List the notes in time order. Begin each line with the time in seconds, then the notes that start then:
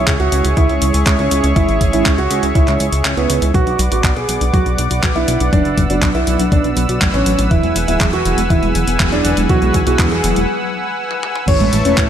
Already playing: G#3 C#4 E4 G#4 C#5 E5 C#6
0.07 C#2, kick, clap, closed hi-hat
0.20 C#2 F#4, closed hi-hat
0.32 C#2 G#3 C#4 E4 C#5, closed hi-hat
0.45 C#2, closed hi-hat
0.57 C#2 E4, kick, closed hi-hat
0.69 C#2 G#3 C#4 E4 C#5, closed hi-hat
0.82 C#2, closed hi-hat
0.94 C#2 G#3 C#4 E4 C#5, closed hi-hat
1.07 C#2 G#3 C#4 E4 C#5, kick, clap, closed hi-hat
1.19 C#2 C#4, closed hi-hat
1.31 C#2, closed hi-hat
1.44 C#2 G#3 C#4 E4 C#5, closed hi-hat
1.56 G#1 G#3 C#4 E4 C#5, kick, closed hi-hat
1.69 G#1, closed hi-hat
1.81 G#1, kick, closed hi-hat
1.93 G#1 G#3 C#4 E4 C#5, closed hi-hat
2.06 C#2, kick, clap, closed hi-hat
2.18 C#2 F#4, closed hi-hat
2.31 C#2 G#3 C#4 E4 C#5, closed hi-hat
2.43 C#2, closed hi-hat
2.55 C#2 E4, kick, closed hi-hat
2.68 C#2 G#3 C#4 E4 C#5, clap, closed hi-hat
2.80 C#2, closed hi-hat
2.92 C#2, closed hi-hat
3.05 C#2 G#3 C#4 E4 C#5, clap, closed hi-hat
3.17 C#2 G#3 B3 C#4 E4 C#5, closed hi-hat
3.30 C#2, closed hi-hat
3.42 C#2 G#3 C#4 E4 B4, closed hi-hat
3.54 B1 F#3 B3 D4 F#4 B4 D5 F#5 D6, kick, closed hi-hat
3.67 B1 D4, closed hi-hat
3.79 B1 F#3, closed hi-hat
3.91 A1 F#3 B3 D4 F#4 B4, closed hi-hat
4.04 B1 F#3, kick, clap, closed hi-hat
4.16 B1 G#4 B4, closed hi-hat
4.29 B1 F#3 B3 D4 B4, closed hi-hat
4.41 B1 D4, closed hi-hat
4.53 B1 F#3 F#4, kick, closed hi-hat
4.66 B1 F#3 B3 D4 B4, closed hi-hat
4.78 B1 F#3, closed hi-hat
4.91 B1 F#3 B3 D4 F#4 B4, closed hi-hat
5.03 B1 F#3 B3 D4 B4, kick, clap, closed hi-hat
5.15 B1 E4 B4, closed hi-hat
5.28 B1 F#3, closed hi-hat
5.40 B1 F#3 B3 D4 B4, closed hi-hat
5.53 F#1 F#3 B3 D4 B4 E6, kick, closed hi-hat
5.65 F#1 D4, closed hi-hat
5.78 F#1 F#3, kick, closed hi-hat
5.90 F#1 F#3 B3 D4 F#4 B4, closed hi-hat
6.02 B1 F#3, kick, clap, closed hi-hat
6.15 B1 E4 B4, closed hi-hat
6.27 B1 F#3 B3 D4 B4, closed hi-hat
6.39 B1 D4, closed hi-hat
6.52 B1 F#3 D4, kick, closed hi-hat
6.64 B1 F#3 B3 D4 B4, closed hi-hat
6.77 B1 F#3, closed hi-hat
6.89 B1 F#3 B3 D4 F#4 B4, closed hi-hat
7.01 A1 F#3 B3 D4 B4, kick, clap, closed hi-hat
7.14 A1 C#4 B4, closed hi-hat
7.26 A1 F#3, closed hi-hat
7.39 A1 F#3 B3 D4 B4, closed hi-hat
7.51 E1 E3 F#3 B3 E4 G#4 F#5 G#5, kick, closed hi-hat
7.63 E1 G#3, closed hi-hat
7.76 E1 E3, closed hi-hat
7.88 D1 F#3 B3 E4 G#4, closed hi-hat
8.01 E1 E3, kick, clap, closed hi-hat
8.13 E1 E4 F#4, closed hi-hat
8.25 E1 E3 F#3 B3 E4 G#4, closed hi-hat
8.38 E1 G#3, closed hi-hat
8.50 E1 E3 E4, kick, closed hi-hat
8.63 E1 F#3 G#3 B3 E4 G#4, closed hi-hat
8.75 E1 E3, closed hi-hat
8.87 E1 F#3 B3 E4 G#4, closed hi-hat
9.00 E1 E3 F#3 B3 E4 G#4, kick, clap, closed hi-hat
9.12 E1 D4 E4, closed hi-hat
9.25 E1 E3, closed hi-hat
9.37 E1 F#3 G#3 B3 E4 G#4, closed hi-hat
9.49 B1 E3 F#3 B3 E4 F#4 G#4, kick, closed hi-hat
9.62 B1 G#3, closed hi-hat
9.74 B1 E3, kick, closed hi-hat
9.87 B1 F#3 B3 E4 F#4 G#4, closed hi-hat
9.99 E1 E3, kick, clap, closed hi-hat
10.12 E1 E4 G#4, closed hi-hat
10.24 E1 E3 F#3 B3 E4 G#4, closed hi-hat
10.36 E1 G#3, closed hi-hat
11.11 high tom
11.23 mid tom
11.36 mid tom
11.48 A1 E3 A3 C#4 E4 B4 C#5 E5 A5 C#6, kick, closed hi-hat, crash
11.60 A1 B3, closed hi-hat, high conga
11.73 A1 E3, closed hi-hat
11.85 E1 A3 C#4 E4 B4 C#5, closed hi-hat
11.98 A1 E3, kick, clap, closed hi-hat